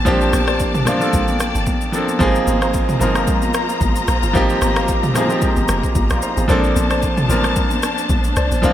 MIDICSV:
0, 0, Header, 1, 6, 480
1, 0, Start_track
1, 0, Key_signature, -2, "major"
1, 0, Tempo, 535714
1, 57, Time_signature, 4, 2, 24, 8
1, 7824, End_track
2, 0, Start_track
2, 0, Title_t, "Synth stab"
2, 0, Program_c, 0, 62
2, 55, Note_on_c, 0, 72, 93
2, 58, Note_on_c, 0, 74, 88
2, 60, Note_on_c, 0, 81, 106
2, 397, Note_off_c, 0, 72, 0
2, 398, Note_off_c, 0, 74, 0
2, 399, Note_off_c, 0, 81, 0
2, 426, Note_on_c, 0, 72, 79
2, 429, Note_on_c, 0, 74, 68
2, 431, Note_on_c, 0, 81, 85
2, 750, Note_off_c, 0, 72, 0
2, 751, Note_off_c, 0, 74, 0
2, 752, Note_off_c, 0, 81, 0
2, 774, Note_on_c, 0, 72, 77
2, 777, Note_on_c, 0, 74, 72
2, 779, Note_on_c, 0, 81, 85
2, 998, Note_off_c, 0, 72, 0
2, 1000, Note_off_c, 0, 74, 0
2, 1001, Note_off_c, 0, 81, 0
2, 1974, Note_on_c, 0, 72, 96
2, 1977, Note_on_c, 0, 77, 88
2, 1979, Note_on_c, 0, 82, 105
2, 2316, Note_off_c, 0, 72, 0
2, 2317, Note_off_c, 0, 77, 0
2, 2319, Note_off_c, 0, 82, 0
2, 2346, Note_on_c, 0, 72, 81
2, 2349, Note_on_c, 0, 77, 73
2, 2352, Note_on_c, 0, 82, 86
2, 2670, Note_off_c, 0, 72, 0
2, 2672, Note_off_c, 0, 77, 0
2, 2673, Note_off_c, 0, 82, 0
2, 2694, Note_on_c, 0, 72, 77
2, 2697, Note_on_c, 0, 77, 73
2, 2700, Note_on_c, 0, 82, 88
2, 2919, Note_off_c, 0, 72, 0
2, 2920, Note_off_c, 0, 77, 0
2, 2922, Note_off_c, 0, 82, 0
2, 3893, Note_on_c, 0, 72, 94
2, 3897, Note_on_c, 0, 77, 87
2, 3899, Note_on_c, 0, 82, 99
2, 4236, Note_off_c, 0, 72, 0
2, 4237, Note_off_c, 0, 77, 0
2, 4239, Note_off_c, 0, 82, 0
2, 4266, Note_on_c, 0, 72, 76
2, 4269, Note_on_c, 0, 77, 71
2, 4272, Note_on_c, 0, 82, 84
2, 4590, Note_off_c, 0, 72, 0
2, 4591, Note_off_c, 0, 77, 0
2, 4593, Note_off_c, 0, 82, 0
2, 4614, Note_on_c, 0, 72, 79
2, 4616, Note_on_c, 0, 77, 71
2, 4619, Note_on_c, 0, 82, 82
2, 4839, Note_off_c, 0, 72, 0
2, 4840, Note_off_c, 0, 77, 0
2, 4841, Note_off_c, 0, 82, 0
2, 5815, Note_on_c, 0, 72, 99
2, 5818, Note_on_c, 0, 74, 84
2, 5821, Note_on_c, 0, 81, 105
2, 6157, Note_off_c, 0, 72, 0
2, 6158, Note_off_c, 0, 74, 0
2, 6159, Note_off_c, 0, 81, 0
2, 6186, Note_on_c, 0, 72, 81
2, 6189, Note_on_c, 0, 74, 72
2, 6192, Note_on_c, 0, 81, 87
2, 6510, Note_off_c, 0, 72, 0
2, 6512, Note_off_c, 0, 74, 0
2, 6513, Note_off_c, 0, 81, 0
2, 6533, Note_on_c, 0, 72, 80
2, 6536, Note_on_c, 0, 74, 72
2, 6538, Note_on_c, 0, 81, 87
2, 6758, Note_off_c, 0, 72, 0
2, 6759, Note_off_c, 0, 74, 0
2, 6761, Note_off_c, 0, 81, 0
2, 7494, Note_on_c, 0, 72, 76
2, 7496, Note_on_c, 0, 74, 73
2, 7499, Note_on_c, 0, 81, 86
2, 7718, Note_off_c, 0, 72, 0
2, 7720, Note_off_c, 0, 74, 0
2, 7721, Note_off_c, 0, 81, 0
2, 7734, Note_on_c, 0, 72, 96
2, 7736, Note_on_c, 0, 74, 88
2, 7739, Note_on_c, 0, 81, 108
2, 7824, Note_off_c, 0, 72, 0
2, 7824, Note_off_c, 0, 74, 0
2, 7824, Note_off_c, 0, 81, 0
2, 7824, End_track
3, 0, Start_track
3, 0, Title_t, "String section"
3, 0, Program_c, 1, 48
3, 0, Note_on_c, 1, 58, 72
3, 0, Note_on_c, 1, 62, 76
3, 0, Note_on_c, 1, 81, 87
3, 60, Note_on_c, 1, 74, 74
3, 1943, Note_off_c, 1, 62, 0
3, 1943, Note_off_c, 1, 81, 0
3, 1959, Note_off_c, 1, 74, 0
3, 1977, Note_on_c, 1, 82, 88
3, 1978, Note_on_c, 1, 72, 70
3, 1979, Note_on_c, 1, 65, 83
3, 5782, Note_off_c, 1, 65, 0
3, 5782, Note_off_c, 1, 72, 0
3, 5782, Note_off_c, 1, 82, 0
3, 5817, Note_on_c, 1, 81, 87
3, 5818, Note_on_c, 1, 62, 83
3, 5819, Note_on_c, 1, 72, 73
3, 7718, Note_off_c, 1, 81, 0
3, 7736, Note_on_c, 1, 79, 89
3, 7824, Note_off_c, 1, 58, 0
3, 7824, Note_off_c, 1, 62, 0
3, 7824, Note_off_c, 1, 72, 0
3, 7824, Note_off_c, 1, 79, 0
3, 7824, End_track
4, 0, Start_track
4, 0, Title_t, "Grand piano"
4, 0, Program_c, 2, 0
4, 0, Control_c, 2, 64, 127
4, 0, Note_on_c, 2, 53, 91
4, 0, Note_on_c, 2, 58, 79
4, 0, Note_on_c, 2, 60, 87
4, 0, Note_on_c, 2, 62, 84
4, 0, Note_on_c, 2, 67, 99
4, 44, Note_off_c, 2, 53, 0
4, 44, Note_on_c, 2, 53, 114
4, 51, Note_off_c, 2, 58, 0
4, 51, Note_on_c, 2, 58, 101
4, 58, Note_off_c, 2, 60, 0
4, 58, Note_on_c, 2, 60, 105
4, 65, Note_off_c, 2, 62, 0
4, 65, Note_on_c, 2, 62, 100
4, 73, Note_off_c, 2, 67, 0
4, 73, Note_on_c, 2, 67, 120
4, 636, Note_off_c, 2, 53, 0
4, 640, Note_off_c, 2, 58, 0
4, 644, Note_off_c, 2, 60, 0
4, 647, Note_off_c, 2, 62, 0
4, 651, Note_off_c, 2, 67, 0
4, 763, Note_on_c, 2, 53, 89
4, 771, Note_on_c, 2, 58, 79
4, 777, Note_on_c, 2, 60, 87
4, 785, Note_on_c, 2, 62, 84
4, 792, Note_on_c, 2, 65, 101
4, 876, Note_off_c, 2, 53, 0
4, 880, Note_off_c, 2, 58, 0
4, 883, Note_off_c, 2, 60, 0
4, 887, Note_off_c, 2, 62, 0
4, 890, Note_off_c, 2, 65, 0
4, 895, Note_on_c, 2, 53, 86
4, 902, Note_on_c, 2, 58, 80
4, 909, Note_on_c, 2, 60, 80
4, 916, Note_on_c, 2, 62, 76
4, 923, Note_on_c, 2, 69, 96
4, 1569, Note_off_c, 2, 53, 0
4, 1573, Note_off_c, 2, 58, 0
4, 1576, Note_off_c, 2, 60, 0
4, 1580, Note_off_c, 2, 62, 0
4, 1583, Note_off_c, 2, 69, 0
4, 1722, Note_on_c, 2, 53, 91
4, 1730, Note_on_c, 2, 58, 85
4, 1737, Note_on_c, 2, 60, 81
4, 1744, Note_on_c, 2, 62, 81
4, 1751, Note_on_c, 2, 69, 93
4, 1927, Note_off_c, 2, 53, 0
4, 1930, Note_off_c, 2, 58, 0
4, 1934, Note_off_c, 2, 60, 0
4, 1938, Note_off_c, 2, 62, 0
4, 1941, Note_off_c, 2, 69, 0
4, 1962, Note_on_c, 2, 53, 115
4, 1969, Note_on_c, 2, 58, 106
4, 1976, Note_on_c, 2, 59, 81
4, 1983, Note_on_c, 2, 63, 102
4, 1988, Control_c, 2, 64, 0
4, 1990, Note_on_c, 2, 68, 126
4, 2034, Note_on_c, 2, 60, 106
4, 2040, Note_off_c, 2, 59, 0
4, 2170, Control_c, 2, 64, 127
4, 2555, Note_off_c, 2, 53, 0
4, 2559, Note_off_c, 2, 58, 0
4, 2566, Note_off_c, 2, 63, 0
4, 2569, Note_off_c, 2, 68, 0
4, 2592, Note_off_c, 2, 60, 0
4, 2683, Note_on_c, 2, 53, 94
4, 2690, Note_on_c, 2, 58, 83
4, 2697, Note_on_c, 2, 60, 84
4, 2704, Note_on_c, 2, 63, 85
4, 2711, Note_on_c, 2, 70, 98
4, 3463, Note_off_c, 2, 53, 0
4, 3466, Note_off_c, 2, 58, 0
4, 3470, Note_off_c, 2, 60, 0
4, 3474, Note_off_c, 2, 63, 0
4, 3477, Note_off_c, 2, 70, 0
4, 3882, Note_on_c, 2, 53, 115
4, 3889, Note_on_c, 2, 58, 100
4, 3896, Note_on_c, 2, 60, 102
4, 3903, Note_on_c, 2, 63, 107
4, 3911, Note_on_c, 2, 67, 123
4, 4475, Note_off_c, 2, 53, 0
4, 4479, Note_off_c, 2, 58, 0
4, 4483, Note_off_c, 2, 60, 0
4, 4486, Note_off_c, 2, 63, 0
4, 4490, Note_off_c, 2, 67, 0
4, 4603, Note_on_c, 2, 53, 89
4, 4610, Note_on_c, 2, 58, 82
4, 4617, Note_on_c, 2, 60, 81
4, 4624, Note_on_c, 2, 63, 85
4, 4631, Note_on_c, 2, 68, 101
4, 4716, Note_off_c, 2, 53, 0
4, 4719, Note_off_c, 2, 58, 0
4, 4723, Note_off_c, 2, 60, 0
4, 4727, Note_off_c, 2, 63, 0
4, 4730, Note_off_c, 2, 68, 0
4, 4735, Note_on_c, 2, 53, 86
4, 4742, Note_on_c, 2, 58, 74
4, 4750, Note_on_c, 2, 60, 76
4, 4756, Note_on_c, 2, 63, 74
4, 4764, Note_on_c, 2, 67, 95
4, 5338, Note_off_c, 2, 60, 0
4, 5341, Note_off_c, 2, 63, 0
4, 5345, Note_off_c, 2, 67, 0
4, 5409, Note_off_c, 2, 53, 0
4, 5413, Note_off_c, 2, 58, 0
4, 5470, Note_on_c, 2, 74, 66
4, 5475, Note_on_c, 2, 65, 58
4, 5572, Note_off_c, 2, 74, 0
4, 5575, Note_off_c, 2, 65, 0
4, 5578, Note_on_c, 2, 72, 73
4, 5583, Note_on_c, 2, 63, 60
4, 5703, Note_off_c, 2, 72, 0
4, 5706, Note_off_c, 2, 63, 0
4, 5710, Note_on_c, 2, 68, 64
4, 5716, Note_on_c, 2, 60, 53
4, 5804, Note_on_c, 2, 53, 112
4, 5805, Note_off_c, 2, 60, 0
4, 5811, Note_on_c, 2, 58, 102
4, 5818, Note_on_c, 2, 60, 104
4, 5825, Note_on_c, 2, 62, 103
4, 5831, Control_c, 2, 64, 0
4, 5833, Note_on_c, 2, 69, 127
4, 5938, Note_off_c, 2, 68, 0
4, 5974, Control_c, 2, 64, 127
4, 6396, Note_off_c, 2, 53, 0
4, 6400, Note_off_c, 2, 58, 0
4, 6403, Note_off_c, 2, 60, 0
4, 6407, Note_off_c, 2, 62, 0
4, 6411, Note_off_c, 2, 69, 0
4, 6522, Note_on_c, 2, 53, 89
4, 6529, Note_on_c, 2, 58, 86
4, 6536, Note_on_c, 2, 60, 82
4, 6543, Note_on_c, 2, 62, 83
4, 6550, Note_on_c, 2, 70, 101
4, 7302, Note_off_c, 2, 53, 0
4, 7306, Note_off_c, 2, 58, 0
4, 7310, Note_off_c, 2, 60, 0
4, 7313, Note_off_c, 2, 62, 0
4, 7316, Note_off_c, 2, 70, 0
4, 7722, Note_on_c, 2, 53, 109
4, 7730, Note_on_c, 2, 58, 99
4, 7737, Note_on_c, 2, 60, 104
4, 7744, Note_on_c, 2, 62, 105
4, 7751, Note_on_c, 2, 65, 127
4, 7824, Note_off_c, 2, 53, 0
4, 7824, Note_off_c, 2, 58, 0
4, 7824, Note_off_c, 2, 60, 0
4, 7824, Note_off_c, 2, 62, 0
4, 7824, Note_off_c, 2, 65, 0
4, 7824, End_track
5, 0, Start_track
5, 0, Title_t, "Log drum bass"
5, 0, Program_c, 3, 39
5, 57, Note_on_c, 3, 34, 103
5, 290, Note_off_c, 3, 34, 0
5, 297, Note_on_c, 3, 34, 95
5, 762, Note_off_c, 3, 34, 0
5, 1018, Note_on_c, 3, 33, 93
5, 1378, Note_off_c, 3, 33, 0
5, 1390, Note_on_c, 3, 31, 85
5, 1494, Note_off_c, 3, 31, 0
5, 1977, Note_on_c, 3, 32, 108
5, 2209, Note_off_c, 3, 32, 0
5, 2217, Note_on_c, 3, 32, 98
5, 2682, Note_off_c, 3, 32, 0
5, 2697, Note_on_c, 3, 31, 90
5, 2929, Note_off_c, 3, 31, 0
5, 3414, Note_on_c, 3, 32, 99
5, 3648, Note_off_c, 3, 32, 0
5, 3657, Note_on_c, 3, 34, 100
5, 3785, Note_off_c, 3, 34, 0
5, 3789, Note_on_c, 3, 31, 95
5, 3894, Note_off_c, 3, 31, 0
5, 3897, Note_on_c, 3, 32, 109
5, 4130, Note_off_c, 3, 32, 0
5, 4138, Note_on_c, 3, 32, 99
5, 4602, Note_off_c, 3, 32, 0
5, 4990, Note_on_c, 3, 31, 88
5, 5094, Note_off_c, 3, 31, 0
5, 5098, Note_on_c, 3, 29, 96
5, 5226, Note_off_c, 3, 29, 0
5, 5334, Note_on_c, 3, 32, 99
5, 5464, Note_off_c, 3, 32, 0
5, 5469, Note_on_c, 3, 34, 81
5, 5574, Note_off_c, 3, 34, 0
5, 5710, Note_on_c, 3, 32, 90
5, 5812, Note_off_c, 3, 32, 0
5, 5817, Note_on_c, 3, 34, 106
5, 6050, Note_off_c, 3, 34, 0
5, 6058, Note_on_c, 3, 34, 100
5, 6522, Note_off_c, 3, 34, 0
5, 6538, Note_on_c, 3, 33, 92
5, 6770, Note_off_c, 3, 33, 0
5, 7254, Note_on_c, 3, 34, 94
5, 7488, Note_off_c, 3, 34, 0
5, 7497, Note_on_c, 3, 36, 100
5, 7625, Note_off_c, 3, 36, 0
5, 7630, Note_on_c, 3, 33, 92
5, 7732, Note_off_c, 3, 33, 0
5, 7737, Note_on_c, 3, 34, 99
5, 7824, Note_off_c, 3, 34, 0
5, 7824, End_track
6, 0, Start_track
6, 0, Title_t, "Drums"
6, 56, Note_on_c, 9, 82, 78
6, 57, Note_on_c, 9, 36, 106
6, 60, Note_on_c, 9, 64, 79
6, 146, Note_off_c, 9, 82, 0
6, 147, Note_off_c, 9, 36, 0
6, 150, Note_off_c, 9, 64, 0
6, 190, Note_on_c, 9, 82, 55
6, 279, Note_off_c, 9, 82, 0
6, 297, Note_on_c, 9, 82, 90
6, 298, Note_on_c, 9, 37, 87
6, 299, Note_on_c, 9, 63, 85
6, 387, Note_off_c, 9, 37, 0
6, 387, Note_off_c, 9, 82, 0
6, 389, Note_off_c, 9, 63, 0
6, 427, Note_on_c, 9, 37, 94
6, 427, Note_on_c, 9, 82, 50
6, 516, Note_off_c, 9, 82, 0
6, 517, Note_off_c, 9, 37, 0
6, 534, Note_on_c, 9, 82, 77
6, 538, Note_on_c, 9, 36, 90
6, 624, Note_off_c, 9, 82, 0
6, 628, Note_off_c, 9, 36, 0
6, 669, Note_on_c, 9, 45, 92
6, 669, Note_on_c, 9, 82, 50
6, 758, Note_off_c, 9, 45, 0
6, 758, Note_off_c, 9, 82, 0
6, 775, Note_on_c, 9, 63, 72
6, 775, Note_on_c, 9, 64, 76
6, 778, Note_on_c, 9, 82, 93
6, 779, Note_on_c, 9, 37, 91
6, 865, Note_off_c, 9, 63, 0
6, 865, Note_off_c, 9, 64, 0
6, 868, Note_off_c, 9, 37, 0
6, 868, Note_off_c, 9, 82, 0
6, 908, Note_on_c, 9, 82, 51
6, 997, Note_off_c, 9, 82, 0
6, 1012, Note_on_c, 9, 64, 80
6, 1015, Note_on_c, 9, 82, 82
6, 1018, Note_on_c, 9, 36, 110
6, 1102, Note_off_c, 9, 64, 0
6, 1105, Note_off_c, 9, 82, 0
6, 1108, Note_off_c, 9, 36, 0
6, 1145, Note_on_c, 9, 82, 53
6, 1154, Note_on_c, 9, 63, 82
6, 1234, Note_off_c, 9, 82, 0
6, 1243, Note_off_c, 9, 63, 0
6, 1253, Note_on_c, 9, 82, 94
6, 1258, Note_on_c, 9, 37, 96
6, 1343, Note_off_c, 9, 82, 0
6, 1347, Note_off_c, 9, 37, 0
6, 1390, Note_on_c, 9, 82, 57
6, 1479, Note_off_c, 9, 82, 0
6, 1492, Note_on_c, 9, 82, 68
6, 1494, Note_on_c, 9, 36, 89
6, 1500, Note_on_c, 9, 63, 71
6, 1500, Note_on_c, 9, 64, 72
6, 1582, Note_off_c, 9, 82, 0
6, 1584, Note_off_c, 9, 36, 0
6, 1590, Note_off_c, 9, 63, 0
6, 1590, Note_off_c, 9, 64, 0
6, 1624, Note_on_c, 9, 82, 66
6, 1713, Note_off_c, 9, 82, 0
6, 1734, Note_on_c, 9, 82, 78
6, 1824, Note_off_c, 9, 82, 0
6, 1867, Note_on_c, 9, 63, 57
6, 1869, Note_on_c, 9, 82, 54
6, 1957, Note_off_c, 9, 63, 0
6, 1959, Note_off_c, 9, 82, 0
6, 1976, Note_on_c, 9, 82, 78
6, 1977, Note_on_c, 9, 36, 108
6, 1979, Note_on_c, 9, 64, 83
6, 2065, Note_off_c, 9, 82, 0
6, 2066, Note_off_c, 9, 36, 0
6, 2068, Note_off_c, 9, 64, 0
6, 2109, Note_on_c, 9, 82, 57
6, 2198, Note_off_c, 9, 82, 0
6, 2217, Note_on_c, 9, 63, 82
6, 2217, Note_on_c, 9, 82, 89
6, 2307, Note_off_c, 9, 63, 0
6, 2307, Note_off_c, 9, 82, 0
6, 2347, Note_on_c, 9, 82, 50
6, 2348, Note_on_c, 9, 37, 89
6, 2437, Note_off_c, 9, 37, 0
6, 2437, Note_off_c, 9, 82, 0
6, 2453, Note_on_c, 9, 82, 75
6, 2458, Note_on_c, 9, 36, 95
6, 2543, Note_off_c, 9, 82, 0
6, 2547, Note_off_c, 9, 36, 0
6, 2588, Note_on_c, 9, 45, 91
6, 2589, Note_on_c, 9, 82, 49
6, 2678, Note_off_c, 9, 45, 0
6, 2678, Note_off_c, 9, 82, 0
6, 2694, Note_on_c, 9, 63, 76
6, 2694, Note_on_c, 9, 64, 75
6, 2697, Note_on_c, 9, 82, 98
6, 2784, Note_off_c, 9, 63, 0
6, 2784, Note_off_c, 9, 64, 0
6, 2787, Note_off_c, 9, 82, 0
6, 2826, Note_on_c, 9, 82, 53
6, 2827, Note_on_c, 9, 37, 95
6, 2915, Note_off_c, 9, 82, 0
6, 2916, Note_off_c, 9, 37, 0
6, 2931, Note_on_c, 9, 64, 83
6, 2933, Note_on_c, 9, 82, 82
6, 2937, Note_on_c, 9, 36, 109
6, 3021, Note_off_c, 9, 64, 0
6, 3023, Note_off_c, 9, 82, 0
6, 3027, Note_off_c, 9, 36, 0
6, 3063, Note_on_c, 9, 82, 53
6, 3072, Note_on_c, 9, 63, 86
6, 3153, Note_off_c, 9, 82, 0
6, 3162, Note_off_c, 9, 63, 0
6, 3172, Note_on_c, 9, 82, 96
6, 3176, Note_on_c, 9, 37, 100
6, 3261, Note_off_c, 9, 82, 0
6, 3266, Note_off_c, 9, 37, 0
6, 3310, Note_on_c, 9, 82, 57
6, 3399, Note_off_c, 9, 82, 0
6, 3413, Note_on_c, 9, 82, 70
6, 3414, Note_on_c, 9, 36, 94
6, 3419, Note_on_c, 9, 63, 75
6, 3419, Note_on_c, 9, 64, 72
6, 3502, Note_off_c, 9, 82, 0
6, 3504, Note_off_c, 9, 36, 0
6, 3508, Note_off_c, 9, 63, 0
6, 3508, Note_off_c, 9, 64, 0
6, 3544, Note_on_c, 9, 82, 67
6, 3634, Note_off_c, 9, 82, 0
6, 3654, Note_on_c, 9, 82, 79
6, 3657, Note_on_c, 9, 37, 85
6, 3744, Note_off_c, 9, 82, 0
6, 3746, Note_off_c, 9, 37, 0
6, 3787, Note_on_c, 9, 63, 54
6, 3790, Note_on_c, 9, 82, 51
6, 3877, Note_off_c, 9, 63, 0
6, 3879, Note_off_c, 9, 82, 0
6, 3897, Note_on_c, 9, 36, 107
6, 3897, Note_on_c, 9, 82, 73
6, 3900, Note_on_c, 9, 64, 77
6, 3987, Note_off_c, 9, 36, 0
6, 3987, Note_off_c, 9, 82, 0
6, 3989, Note_off_c, 9, 64, 0
6, 4029, Note_on_c, 9, 82, 52
6, 4119, Note_off_c, 9, 82, 0
6, 4138, Note_on_c, 9, 37, 90
6, 4138, Note_on_c, 9, 82, 89
6, 4140, Note_on_c, 9, 63, 85
6, 4227, Note_off_c, 9, 82, 0
6, 4228, Note_off_c, 9, 37, 0
6, 4229, Note_off_c, 9, 63, 0
6, 4268, Note_on_c, 9, 82, 48
6, 4269, Note_on_c, 9, 37, 96
6, 4358, Note_off_c, 9, 37, 0
6, 4358, Note_off_c, 9, 82, 0
6, 4374, Note_on_c, 9, 82, 77
6, 4378, Note_on_c, 9, 36, 86
6, 4464, Note_off_c, 9, 82, 0
6, 4468, Note_off_c, 9, 36, 0
6, 4510, Note_on_c, 9, 45, 96
6, 4510, Note_on_c, 9, 82, 50
6, 4599, Note_off_c, 9, 45, 0
6, 4599, Note_off_c, 9, 82, 0
6, 4615, Note_on_c, 9, 63, 75
6, 4615, Note_on_c, 9, 64, 75
6, 4618, Note_on_c, 9, 82, 98
6, 4619, Note_on_c, 9, 37, 90
6, 4704, Note_off_c, 9, 63, 0
6, 4704, Note_off_c, 9, 64, 0
6, 4708, Note_off_c, 9, 37, 0
6, 4708, Note_off_c, 9, 82, 0
6, 4747, Note_on_c, 9, 82, 53
6, 4837, Note_off_c, 9, 82, 0
6, 4851, Note_on_c, 9, 64, 81
6, 4855, Note_on_c, 9, 82, 82
6, 4858, Note_on_c, 9, 36, 112
6, 4941, Note_off_c, 9, 64, 0
6, 4944, Note_off_c, 9, 82, 0
6, 4948, Note_off_c, 9, 36, 0
6, 4983, Note_on_c, 9, 82, 53
6, 4992, Note_on_c, 9, 63, 80
6, 5073, Note_off_c, 9, 82, 0
6, 5082, Note_off_c, 9, 63, 0
6, 5092, Note_on_c, 9, 82, 96
6, 5097, Note_on_c, 9, 37, 98
6, 5182, Note_off_c, 9, 82, 0
6, 5186, Note_off_c, 9, 37, 0
6, 5228, Note_on_c, 9, 36, 90
6, 5230, Note_on_c, 9, 82, 57
6, 5318, Note_off_c, 9, 36, 0
6, 5319, Note_off_c, 9, 82, 0
6, 5333, Note_on_c, 9, 82, 70
6, 5334, Note_on_c, 9, 36, 95
6, 5340, Note_on_c, 9, 63, 74
6, 5340, Note_on_c, 9, 64, 75
6, 5423, Note_off_c, 9, 82, 0
6, 5424, Note_off_c, 9, 36, 0
6, 5429, Note_off_c, 9, 63, 0
6, 5429, Note_off_c, 9, 64, 0
6, 5465, Note_on_c, 9, 82, 64
6, 5471, Note_on_c, 9, 37, 92
6, 5554, Note_off_c, 9, 82, 0
6, 5561, Note_off_c, 9, 37, 0
6, 5575, Note_on_c, 9, 82, 78
6, 5664, Note_off_c, 9, 82, 0
6, 5708, Note_on_c, 9, 63, 56
6, 5709, Note_on_c, 9, 82, 53
6, 5798, Note_off_c, 9, 63, 0
6, 5799, Note_off_c, 9, 82, 0
6, 5816, Note_on_c, 9, 82, 73
6, 5817, Note_on_c, 9, 36, 105
6, 5821, Note_on_c, 9, 64, 82
6, 5906, Note_off_c, 9, 82, 0
6, 5907, Note_off_c, 9, 36, 0
6, 5911, Note_off_c, 9, 64, 0
6, 5950, Note_on_c, 9, 82, 55
6, 6039, Note_off_c, 9, 82, 0
6, 6058, Note_on_c, 9, 82, 86
6, 6060, Note_on_c, 9, 63, 83
6, 6148, Note_off_c, 9, 82, 0
6, 6149, Note_off_c, 9, 63, 0
6, 6188, Note_on_c, 9, 37, 93
6, 6188, Note_on_c, 9, 82, 49
6, 6277, Note_off_c, 9, 37, 0
6, 6277, Note_off_c, 9, 82, 0
6, 6294, Note_on_c, 9, 82, 73
6, 6298, Note_on_c, 9, 36, 90
6, 6383, Note_off_c, 9, 82, 0
6, 6388, Note_off_c, 9, 36, 0
6, 6429, Note_on_c, 9, 45, 99
6, 6429, Note_on_c, 9, 82, 49
6, 6518, Note_off_c, 9, 45, 0
6, 6519, Note_off_c, 9, 82, 0
6, 6537, Note_on_c, 9, 63, 71
6, 6537, Note_on_c, 9, 64, 70
6, 6537, Note_on_c, 9, 82, 97
6, 6627, Note_off_c, 9, 63, 0
6, 6627, Note_off_c, 9, 64, 0
6, 6627, Note_off_c, 9, 82, 0
6, 6667, Note_on_c, 9, 82, 55
6, 6668, Note_on_c, 9, 37, 91
6, 6757, Note_off_c, 9, 82, 0
6, 6758, Note_off_c, 9, 37, 0
6, 6773, Note_on_c, 9, 64, 79
6, 6774, Note_on_c, 9, 82, 82
6, 6778, Note_on_c, 9, 36, 110
6, 6863, Note_off_c, 9, 64, 0
6, 6864, Note_off_c, 9, 82, 0
6, 6867, Note_off_c, 9, 36, 0
6, 6904, Note_on_c, 9, 82, 56
6, 6913, Note_on_c, 9, 63, 83
6, 6993, Note_off_c, 9, 82, 0
6, 7003, Note_off_c, 9, 63, 0
6, 7013, Note_on_c, 9, 82, 92
6, 7018, Note_on_c, 9, 37, 97
6, 7103, Note_off_c, 9, 82, 0
6, 7107, Note_off_c, 9, 37, 0
6, 7150, Note_on_c, 9, 82, 56
6, 7240, Note_off_c, 9, 82, 0
6, 7253, Note_on_c, 9, 82, 66
6, 7254, Note_on_c, 9, 36, 91
6, 7260, Note_on_c, 9, 63, 75
6, 7260, Note_on_c, 9, 64, 77
6, 7343, Note_off_c, 9, 82, 0
6, 7344, Note_off_c, 9, 36, 0
6, 7349, Note_off_c, 9, 63, 0
6, 7349, Note_off_c, 9, 64, 0
6, 7384, Note_on_c, 9, 82, 66
6, 7474, Note_off_c, 9, 82, 0
6, 7494, Note_on_c, 9, 82, 84
6, 7497, Note_on_c, 9, 37, 90
6, 7584, Note_off_c, 9, 82, 0
6, 7586, Note_off_c, 9, 37, 0
6, 7628, Note_on_c, 9, 63, 56
6, 7631, Note_on_c, 9, 82, 55
6, 7717, Note_off_c, 9, 63, 0
6, 7720, Note_off_c, 9, 82, 0
6, 7737, Note_on_c, 9, 36, 102
6, 7737, Note_on_c, 9, 82, 75
6, 7741, Note_on_c, 9, 64, 81
6, 7824, Note_off_c, 9, 36, 0
6, 7824, Note_off_c, 9, 64, 0
6, 7824, Note_off_c, 9, 82, 0
6, 7824, End_track
0, 0, End_of_file